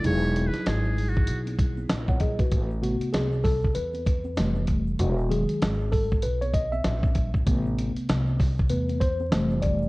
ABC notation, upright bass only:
X:1
M:4/4
L:1/16
Q:"Swing 16ths" 1/4=97
K:E
V:1 name="Upright bass" clef=bass
E,,,3 z G,,,4 B,,,4 ^A,,,4 | A,,,3 z =C,,4 E,,4 =F,,,4 | E,,,3 z G,,,4 B,,,4 ^A,,,4 | A,,,3 z =C,,4 E,,4 =F,,,4 |]